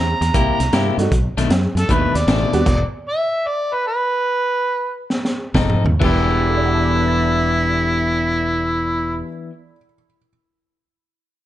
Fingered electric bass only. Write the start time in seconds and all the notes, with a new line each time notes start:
Already playing: E2
0.21 E2
0.34 C2
0.60 C2
0.73 G2
0.98 G2
1.11 B1
1.37 B1
1.49 F#2
1.75 F#2
1.89 D#2
2.15 D#2
2.27 A1
2.53 D#2
2.66 E1
5.54 F1
5.85 D#2
6.01 E1